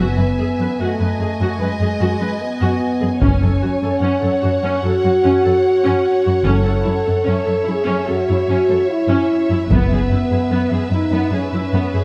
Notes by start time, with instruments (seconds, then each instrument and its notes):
Already playing: viola section F#4, violin section E5 G#5
0.00 double bass section F#1, french horn section B3
0.17 cello section F#2, viola section B4
0.38 cello section F#2, viola section G#4
0.59 cello section F#2, viola section B4
0.79 cello section F#2, french horn section A3, viola section F#4, violin section D#5
1.00 cello section F#2, viola section B4
1.19 cello section F#2, viola section G#4
1.40 cello section F#2, viola section F#4
1.59 cello section F#2, french horn section G#3, viola section B4
1.79 cello section F#2, viola section G#4
2.00 cello section F#2, viola section F#4
2.20 cello section F#2, viola section B4
2.40 french horn section B3
2.61 cello section F#2, viola section F#4
3.01 cello section F#2, viola section G#4
3.21 double bass section F#1, cello section F#2, viola section C#4, french horn section C#4, violin section C#5, taiko
3.42 cello section F#2, viola section A4
3.61 cello section F#2, viola section F#4
3.82 cello section F#2, viola section A4
4.01 cello section F#2, viola section C#4, violin section F#5
4.22 cello section F#2, viola section A4
4.43 cello section F#2, viola section F#4
4.62 cello section F#2, viola section C#4
4.83 cello section F#2, french horn section F#4, viola section A4
5.04 cello section F#2, viola section F#4
5.24 cello section F#2, viola section C#4
5.45 cello section F#2, viola section A4
5.84 cello section F#2, viola section C#4
6.24 cello section F#2, viola section F#4
6.45 double bass section F#1, cello section F#2, viola section C#4, french horn section A4
6.64 cello section F#2, viola section A4
6.83 cello section F#2, viola section E4
7.06 cello section F#2, viola section A4
7.25 cello section F#2, viola section C#4, violin section E5
7.45 cello section F#2, viola section A4
7.65 cello section F#2, viola section E4, french horn section G#4
7.86 cello section F#2, viola section C#4
8.06 cello section F#2, french horn section F#4, viola section A4
8.29 cello section F#2, viola section E4
8.49 cello section F#2, viola section C#4
8.69 cello section F#2, viola section A4
8.88 french horn section E4
9.08 cello section F#2, viola section C#4
9.50 cello section F#2, viola section E4
9.69 double bass section F#1, cello section F#2, french horn section B3, viola section B3, violin section B4, taiko
9.90 cello section F#2, viola section G#4
10.10 cello section F#2, viola section E4
10.30 cello section F#2, viola section G#4
10.50 cello section F#2, viola section B3
10.70 cello section F#2, viola section G#4
10.90 cello section F#2, french horn section D#4, viola section E4
11.11 cello section F#2, viola section B3
11.31 cello section F#2, french horn section C#4, viola section G#4
11.52 cello section F#2, viola section E4
11.73 cello section F#2, viola section B3
11.93 cello section F#2, viola section G#4